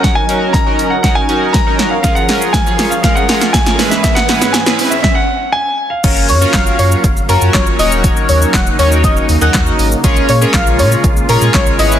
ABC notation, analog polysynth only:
X:1
M:4/4
L:1/16
Q:1/4=120
K:F#
V:1 name="Analog polysynth"
[CDFA] z [CDFA]2 z [CDFA]2 z [CDFA] z [CDFA]2 z [CDFA]2 z | [CEGA] z [CEGA]2 z [CEGc]2 z [CEGA] z [CEGA]2 z [CEGA] [G,C=EGB]2- | [G,C=EGB] z [G,CEGB]2 z [G,CEGB]2 z8 z | [CEFAc]2 z [CEFAc]4- [CEFAc] z2 [CEFAc]4 [CDFAc]2- |
[CDFAc]4 z2 [CDFAc]4 z [CDFAd]4 z | [CEGAc]2 z [CEGAc]4- [CEGAc] z2 [CEGAc]4 [C=EGBc]2 |]